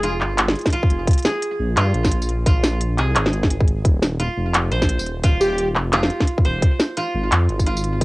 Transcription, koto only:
0.00 0.72 F4 loud
0.00 1.24 G#4 medium
0.73 1.76 F4 medium
1.25 2.98 G#4 medium
1.77 2.46 F4 loud
2.46 4.19 F4 medium
2.98 4.95 G#4 medium
4.20 5.23 F4 medium
4.72 6.43 C5 medium
5.24 5.93 F4 loud
5.93 6.97 F4 medium
6.45 8.04 C5 medium
6.97 7.66 F4 loud
7.66 8.04 F4 medium

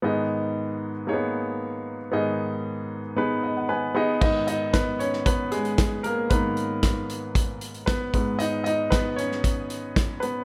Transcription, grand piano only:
0.02 2.09 G#2 medium
0.02 2.09 D#3 medium
0.02 0.91 B3 medium
0.02 0.91 D#4 medium
0.02 0.92 G#4 soft
0.02 0.92 D#5 medium
1.07 1.14 A#3 soft
1.07 1.96 D#4 medium
1.07 1.96 G#4 medium
1.07 1.96 C#5 medium
1.13 1.99 B3 medium
2.12 3.92 G#2 medium
2.12 3.91 D#3 medium
2.12 3.00 B3 medium
2.12 3.00 D#4 medium
2.12 3.01 G#4 medium
2.12 3.01 D#5 medium
3.16 3.69 B3 medium
3.16 3.94 D#4 medium
3.16 3.94 G#4 medium
3.16 3.67 B4 medium
3.43 3.55 D#5 medium
3.57 3.69 F#5 medium
3.69 3.93 B3 medium
3.69 4.18 B4 medium
3.69 3.94 G#5 medium
3.95 4.17 B3 medium
3.95 4.17 D#4 medium
3.95 4.18 G#4 medium
3.95 4.18 D#5 medium
3.95 4.20 B5 medium
4.21 6.27 G#2 soft
4.21 6.27 D#3 soft
4.21 4.73 B3 soft
4.21 4.47 D#4 medium
4.21 4.46 D#5 medium
4.47 4.55 D#4 medium
4.47 4.53 D#5 medium
4.73 4.99 B3 medium
4.73 5.01 B4 medium
4.99 5.07 C#4 medium
4.99 5.05 C#5 medium
5.26 5.51 B3 medium
5.26 5.53 B4 medium
5.52 6.02 G#3 medium
5.52 6.06 G#4 medium
6.03 6.29 A#3 medium
6.03 6.31 A#4 medium
6.30 8.10 G#2 soft
6.30 8.10 D#3 soft
6.30 7.06 B3 medium
6.30 7.05 B4 medium
7.86 8.13 B3 medium
7.86 8.41 B4 medium
8.14 8.48 G#2 soft
8.14 8.49 G#3 soft
8.14 8.49 B3 medium
8.39 8.65 D#4 medium
8.39 8.63 D#5 medium
8.64 8.91 D#4 medium
8.64 8.92 D#5 medium
8.90 8.99 B3 medium
8.90 8.96 B4 medium
9.16 10.19 C#4 medium
9.16 10.25 C#5 medium
10.20 10.44 B3 medium
10.20 10.44 B4 medium

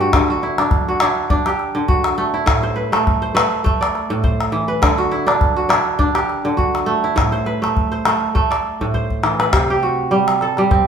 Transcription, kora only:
0.00 0.18 G2 medium
0.00 0.82 A3 medium
0.00 0.30 F#4 medium
0.00 0.36 G4 medium
0.00 1.02 A4 medium
0.00 0.64 B4 medium
0.00 0.73 C5 medium
0.14 1.73 D3 medium
0.30 0.88 F#4 medium
0.43 1.01 E4 medium
0.59 1.01 D4 medium
0.88 1.52 F#4 medium
1.01 1.30 D4 medium
1.01 2.33 E4 medium
1.30 2.98 D4 medium
1.46 1.94 G4 medium
1.75 2.52 D3 medium
1.88 3.34 F#4 medium
2.18 2.92 A3 medium
2.34 3.90 E4 medium
2.46 4.09 A2 medium
2.63 3.21 C5 medium
2.76 3.28 B4 medium
2.92 3.34 A3 medium
3.22 4.23 C5 medium
3.35 3.64 A3 medium
3.35 4.30 B4 medium
3.64 5.64 A3 medium
3.81 4.92 D5 medium
4.10 4.86 A2 medium
4.24 4.74 C5 medium
4.52 4.86 E3 medium
4.68 5.91 B4 medium
4.82 6.44 D3 medium
4.98 5.56 F#4 medium
5.11 5.69 E4 medium
5.27 5.69 D4 medium
5.56 6.21 F#4 medium
5.69 5.98 D4 medium
5.69 7.03 E4 medium
5.99 7.67 D4 medium
6.15 6.63 G4 medium
6.45 7.21 D3 medium
6.57 8.03 F#4 medium
6.86 7.61 A3 medium
7.04 8.61 E4 medium
7.16 8.80 A2 medium
7.32 7.91 C5 medium
7.46 7.98 B4 medium
7.62 8.06 A3 medium
7.92 8.94 C5 medium
8.06 8.34 A3 medium
8.35 10.35 A3 medium
8.50 9.61 D5 medium
8.81 9.57 A2 medium
8.94 9.46 C5 medium
9.23 9.57 E3 medium
9.40 10.62 B4 medium
9.53 10.87 C3 medium
9.70 10.87 G4 medium
9.83 10.64 F#4 medium
10.11 10.57 G3 medium
10.42 10.87 A4 medium
10.58 10.87 G3 medium
10.71 10.87 C4 medium

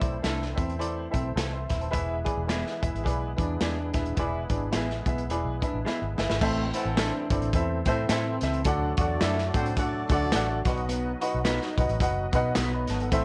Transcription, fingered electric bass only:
0.02 0.22 B1 medium
0.24 0.53 C2 medium
0.58 1.07 E2 medium
1.14 1.34 B1 medium
1.36 1.65 C2 medium
1.70 1.91 D#1 medium
1.94 2.22 E1 loud
2.37 2.62 E1 medium
2.83 2.93 E1 medium
2.94 3.04 G#1 medium
3.06 3.34 B1 medium
3.38 3.59 E2 medium
3.61 3.90 E2 medium
3.94 4.15 D#1 medium
4.17 4.46 E1 medium
4.50 4.70 G#1 medium
4.74 5.02 A1 medium
5.06 5.27 B1 medium
5.29 5.44 E1 medium
5.45 5.60 B1 medium
5.74 5.84 A1 medium
6.02 6.16 G#1 medium
6.19 6.29 G1 medium
6.31 6.41 G#1 medium
6.42 6.70 A1 loud
6.85 7.10 A1 medium
7.30 7.40 G1 medium
7.42 7.52 A1 medium
7.54 7.82 E2 loud
7.87 8.07 A2 medium
8.09 8.38 A2 loud
8.42 8.62 C#2 medium
8.66 8.94 D2 loud
8.98 9.18 E2 medium
9.22 9.50 F#2 loud
9.54 10.03 A2 medium
10.10 10.30 D2 medium
10.34 10.62 A1 medium
10.65 11.14 B1 medium
11.34 11.58 B1 medium
11.78 11.87 B1 medium
11.89 11.99 A1 loud
12.00 12.28 F#1 medium
12.33 12.53 B2 loud
12.57 12.85 B1 loud
12.89 13.09 G#1 medium
13.12 13.25 A1 loud

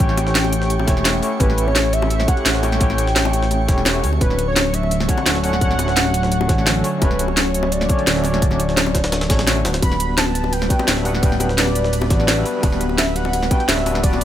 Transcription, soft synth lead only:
0.00 1.23 G5 loud
1.40 1.65 B4 loud
1.67 1.95 C#5 loud
1.93 2.10 E5 loud
2.11 2.27 E5 loud
2.28 2.65 F#5 loud
2.63 4.04 G5 loud
4.21 4.46 B4 loud
4.48 4.76 C#5 loud
4.74 5.09 E5 loud
5.09 5.42 F#5 loud
5.44 6.80 F#5 loud
7.02 7.27 B4 medium
7.29 7.73 C#5 medium
7.72 9.47 D5 loud
9.83 10.19 B5 loud
10.18 10.54 A5 loud
10.53 10.88 G5 loud
11.05 11.24 F#5 loud
11.23 11.57 G5 loud
11.58 12.41 D5 medium
12.98 13.17 E5 loud
13.16 13.50 F#5 loud
13.51 13.67 G5 loud
13.68 14.01 E5 medium
14.03 14.24 D5 loud

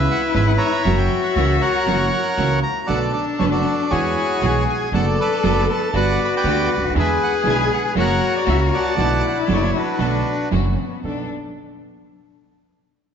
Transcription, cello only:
0.00 0.87 E4 loud
0.85 2.64 F#4 loud
2.92 3.93 D4 medium
3.92 4.44 E4 medium
4.42 4.96 G#4 medium
4.94 5.96 A4 loud
5.94 6.98 F#4 loud
6.96 7.97 G#4 loud
7.98 9.01 F#4 loud
8.99 10.02 E4 loud
10.00 10.53 D4 medium
10.51 10.81 C#4 medium
10.80 11.05 B3 medium
11.05 11.28 D4 medium

